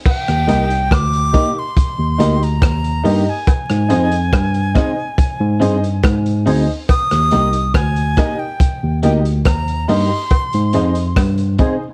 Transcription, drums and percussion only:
0.06 kick loud
0.06 crash medium
0.06 cowbell medium
0.28 cross-stick medium
0.28 closed hi-hat medium
0.48 closed hi-hat medium
0.70 closed hi-hat medium
0.91 kick loud
0.91 cross-stick loud
0.91 closed hi-hat medium
0.91 cowbell medium
1.13 closed hi-hat soft
1.34 kick medium
1.34 closed hi-hat medium
1.77 kick loud
1.77 closed hi-hat medium
2.20 closed hi-hat medium
2.43 closed hi-hat soft
2.62 kick loud
2.62 cross-stick loud
2.62 closed hi-hat medium
2.62 cowbell medium
2.84 closed hi-hat medium
3.05 open hi-hat medium
3.47 kick loud
3.47 closed hi-hat medium
3.47 cowbell medium
3.69 cross-stick medium
3.69 closed hi-hat medium
3.90 closed hi-hat medium
4.11 closed hi-hat soft
4.33 kick loud
4.33 cross-stick loud
4.33 closed hi-hat medium
4.33 cowbell medium
4.54 closed hi-hat soft
4.75 kick loud
4.75 cross-stick medium
4.75 closed hi-hat medium
5.18 kick loud
5.18 closed hi-hat medium
5.62 closed hi-hat medium
5.84 closed hi-hat soft
6.03 kick loud
6.03 cross-stick loud
6.03 closed hi-hat medium
6.03 cowbell medium
6.26 closed hi-hat medium
6.47 open hi-hat medium
6.89 kick loud
6.89 closed hi-hat medium
6.89 cowbell medium
7.11 cross-stick medium
7.11 closed hi-hat medium
7.31 closed hi-hat medium
7.53 closed hi-hat medium
7.74 kick loud
7.74 cross-stick loud
7.74 closed hi-hat medium
7.74 cowbell medium
7.96 closed hi-hat medium
8.17 kick medium
8.17 cross-stick medium
8.17 closed hi-hat medium
8.60 kick loud
8.60 closed hi-hat medium
9.03 closed hi-hat medium
9.25 closed hi-hat soft
9.45 kick loud
9.45 cross-stick loud
9.45 closed hi-hat loud
9.45 cowbell medium
9.68 closed hi-hat soft
9.89 open hi-hat medium
10.30 kick loud
10.30 closed hi-hat medium
10.30 cowbell medium
10.53 closed hi-hat medium
10.73 closed hi-hat medium
10.95 closed hi-hat medium
11.16 kick loud
11.16 cross-stick loud
11.16 closed hi-hat medium
11.16 cowbell medium
11.38 closed hi-hat soft
11.58 kick medium
11.58 closed hi-hat medium

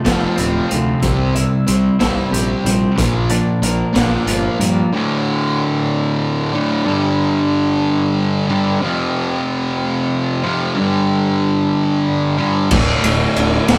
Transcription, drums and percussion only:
0.05 kick medium
0.05 snare medium
0.05 closed hi-hat medium
0.37 closed hi-hat medium
0.71 closed hi-hat medium
1.02 kick loud
1.02 closed hi-hat medium
1.35 closed hi-hat medium
1.67 closed hi-hat medium
2.00 kick medium
2.00 snare loud
2.00 closed hi-hat medium
2.34 closed hi-hat medium
2.66 closed hi-hat medium
2.98 kick loud
2.98 closed hi-hat medium
3.29 closed hi-hat medium
3.63 closed hi-hat medium
3.95 kick medium
3.95 snare loud
3.95 closed hi-hat medium
4.27 closed hi-hat medium
4.60 closed hi-hat medium
12.71 kick loud
12.71 crash loud
13.04 ride medium
13.36 ride medium
13.68 snare loud
13.68 ride loud

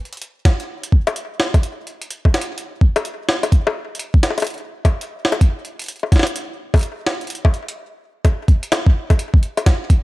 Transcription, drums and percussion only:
0.05 closed hi-hat soft
0.13 closed hi-hat soft
0.17 closed hi-hat soft
0.22 closed hi-hat medium
0.45 kick loud
0.45 snare loud
0.45 closed hi-hat medium
0.60 closed hi-hat medium
0.83 closed hi-hat medium
0.92 kick loud
1.07 closed hi-hat medium
1.07 high bongo medium
1.16 closed hi-hat medium
1.40 snare loud
1.54 kick loud
1.54 closed hi-hat soft
1.54 high bongo medium
1.63 closed hi-hat medium
1.87 closed hi-hat soft
2.02 closed hi-hat soft
2.10 closed hi-hat medium
2.25 kick loud
2.25 high bongo soft
2.34 snare loud
2.34 closed hi-hat medium
2.41 closed hi-hat medium
2.58 closed hi-hat medium
2.81 kick loud
2.96 closed hi-hat soft
2.96 high bongo medium
3.05 closed hi-hat medium
3.29 snare loud
3.43 closed hi-hat medium
3.43 high bongo medium
3.52 kick loud
3.52 closed hi-hat medium
3.67 high bongo medium
3.95 closed hi-hat soft
3.99 closed hi-hat medium
4.14 kick loud
4.23 snare loud
4.23 closed hi-hat medium
4.23 high bongo soft
4.30 high bongo soft
4.38 closed hi-hat medium
4.38 high bongo soft
4.40 closed hi-hat soft
4.42 closed hi-hat soft
4.42 high bongo soft
4.44 closed hi-hat soft
4.47 closed hi-hat medium
4.50 closed hi-hat soft
4.54 closed hi-hat soft
4.58 closed hi-hat soft
4.85 kick loud
4.85 closed hi-hat medium
4.85 high bongo medium
5.01 closed hi-hat medium
5.25 snare loud
5.32 closed hi-hat medium
5.32 high bongo medium
5.41 kick loud
5.41 closed hi-hat medium
5.65 closed hi-hat soft
5.79 closed hi-hat soft
5.82 closed hi-hat soft
5.84 closed hi-hat soft
5.86 closed hi-hat soft
5.88 closed hi-hat medium
5.92 closed hi-hat soft
5.96 closed hi-hat soft
5.99 closed hi-hat soft
5.99 high bongo soft
6.12 kick loud
6.12 snare medium
6.12 closed hi-hat medium
6.16 snare medium
6.19 snare medium
6.23 snare loud
6.23 closed hi-hat medium
6.36 closed hi-hat medium
6.74 kick loud
6.74 closed hi-hat soft
6.74 high bongo medium
6.76 closed hi-hat soft
6.77 closed hi-hat soft
6.79 closed hi-hat soft
6.81 closed hi-hat soft
6.83 closed hi-hat medium
7.06 snare loud
7.21 closed hi-hat soft
7.27 closed hi-hat soft
7.30 closed hi-hat medium
7.35 closed hi-hat soft
7.45 kick loud
7.45 high bongo medium
7.54 closed hi-hat soft
7.68 closed hi-hat medium
8.25 kick loud
8.25 closed hi-hat medium
8.25 high bongo medium
8.48 kick loud
8.48 closed hi-hat soft
8.63 closed hi-hat medium
8.72 snare loud
8.72 closed hi-hat medium
8.72 high bongo medium
8.87 kick loud
9.10 kick loud
9.10 closed hi-hat medium
9.10 high bongo medium
9.19 closed hi-hat medium
9.34 kick loud
9.43 closed hi-hat soft
9.57 closed hi-hat medium
9.57 high bongo medium
9.66 kick loud
9.66 snare loud
9.66 closed hi-hat medium
9.90 kick loud
9.90 closed hi-hat medium

